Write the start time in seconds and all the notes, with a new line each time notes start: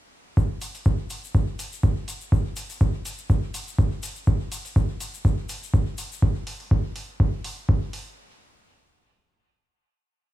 0.37 kick, shaker
0.61 open hi-hat, shaker
0.75 open hi-hat, shaker
0.85 kick, shaker
1.10 open hi-hat, shaker
1.24 shaker
1.35 kick, shaker
1.59 open hi-hat, shaker
1.72 shaker
1.83 kick, shaker
2.08 open hi-hat, shaker
2.21 shaker
2.32 kick, shaker
2.56 open hi-hat, shaker
2.69 open hi-hat, shaker
2.81 kick, shaker
3.05 open hi-hat, shaker
3.18 shaker
3.30 kick, shaker
3.54 open hi-hat, shaker
3.67 shaker
3.78 kick, shaker
4.03 open hi-hat, shaker
4.16 shaker
4.27 kick, shaker
4.52 open hi-hat, shaker
4.65 open hi-hat, shaker
4.76 kick, shaker
5.00 open hi-hat, shaker
5.14 shaker
5.25 kick, shaker
5.49 open hi-hat, shaker
5.63 shaker
5.74 kick, shaker
5.98 open hi-hat, shaker
6.12 shaker
6.22 kick
6.47 open hi-hat
6.60 open hi-hat
6.71 kick
6.96 open hi-hat
7.20 kick
7.44 open hi-hat
7.69 kick
7.93 open hi-hat